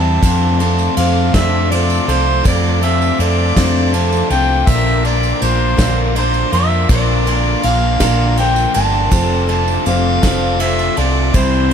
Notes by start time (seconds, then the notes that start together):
Already playing: E2 E3 G3 C4 D4 E4 G4 C5 E5 A5 D6
0.22 F2 C3 F3 A3 C4 D4 F4 A4, kick, ride, tambourine
0.59 F3 A3 C4 D4 F4 A4 A5, ride
0.79 tambourine
0.97 F2 A3 C4 D4 A4 F5, ride
1.33 F2 C3 F3 A3 C4 D4 F4 A4 E5, kick, snare, ride, tambourine
1.70 F3 A3 C4 D4 F4 A4 D5, ride
1.90 tambourine
2.07 C2 F3 A3 C4 D4 F4 A4 C5, ride
2.44 F2 C3 F3 A3 C4 D4 F4 A4 D5, kick, ride, tambourine
2.64 tambourine
2.81 F3 A3 C4 D4 F4 A4 E5, ride, tambourine
3.02 tambourine
3.18 F2 A3 C4 D4 A4 D5, ride
3.55 F2 C3 F3 A3 C4 D4 F4 A4, kick, snare, ride, tambourine
3.92 F3 A3 C4 D4 F4 A5, ride
3.96 A4
4.12 tambourine
4.30 C2 F3 A3 C4 D4 F4 A4 G5, ride
4.67 A#1 A#2 D3 F3 A#3 D4 F4 A#4 E5, kick, tambourine, crash
5.04 F3 A#3 D4 F4 A#4 D5, ride
5.23 tambourine
5.42 A#1 F3 A#3 D4 A#4 C5, ride
5.77 A#1 A#2 D3 F3 A#3 D4 F4 A#4, kick, snare, ride, tambourine
6.14 D3 F3 A#3 D4 F4 A#4 C5, ride
6.34 tambourine
6.52 F2 F3 A#3 D4 F4 A#4 E5, ride
6.89 A#1 A#2 D3 F3 A#3 D4 F4 A#4 D5, kick, ride, tambourine
7.26 F3 A#3 D4 F4 A#4, ride
7.63 A#1 F3 A#3 D4 A#4 F5, ride
8.00 A#1 A#2 D3 F3 A#3 D4 F4 A#4, kick, snare, ride, tambourine
8.37 D3 F3 A#3 D4 F4 A#4 G5, ride
8.56 tambourine
8.74 G1 F3 A#3 D4 F4 A#4 A5, ride
9.11 F1 F2 C3 F3 A3 C4 D4 F4 A4 D6, kick, ride, tambourine
9.47 F3 A3 C4 D4 F4 A4 A5, ride
9.68 tambourine
9.85 F1 F3 C4 D4 A4 F5, ride
10.22 F1 F2 C3 F3 A3 C4 D4 F4 A4, kick, snare, ride, tambourine
10.59 F3 A3 C4 D4 F4 A4 E5, ride
10.79 tambourine
10.96 C2 F3 A3 C4 D4 F4 A4 D5, ride
11.34 C2 C3 E3 G3 C4 E4 G4 C5 E5 C6, kick, ride, tambourine
11.53 tambourine
11.70 E4 G4